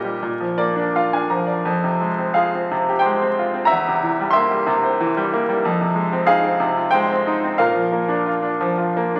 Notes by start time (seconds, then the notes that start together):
Already playing: A#2 G3 G4 D#5
0.04 G3
0.23 A#2
0.40 F3
0.58 A#3 D5
0.76 D4
0.96 F4 F5
1.13 D4 G#5
1.30 F3 A#5
1.47 D5
1.65 F2
1.84 C3
2.01 G#3
2.18 C4
2.34 F4 G#4 F5
2.55 C4
2.71 C3
2.89 G4
2.99 C5 G5
3.06 G#3
3.22 C4
3.39 F4
3.54 C4
3.65 E5 A#5
3.72 E2
3.88 C3
4.03 E3
4.20 G3
4.31 E5 C6
4.35 A#3
4.51 G3
4.67 C3
4.84 C5
5.00 E3
5.17 G3
5.34 A#3
5.49 G3
5.65 F2
5.81 C3
5.95 G#3
6.13 C4
6.26 D#4 G#4 F5
6.44 C4
6.60 C3
6.77 F4
6.91 G#3 C5 G5
7.11 C4
7.27 D#4
7.44 C4
7.58 A#2 A#4 F5
7.75 F3
7.92 A#3
8.08 D4
8.26 F4
8.42 D4
8.61 F3
8.78 F4
8.97 A#3
9.16 D4